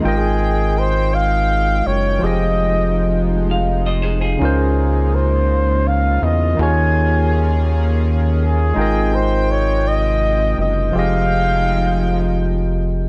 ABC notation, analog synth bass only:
X:1
M:6/8
L:1/8
Q:3/8=55
K:Fm
V:1 name="Analog synth bass" clef=bass
A,,,4- A,,, _G,,, | F,,,6 | D,,4- D,, =E,, | E,,6 |
A,,,4- A,,, _G,,, | F,,,6 |]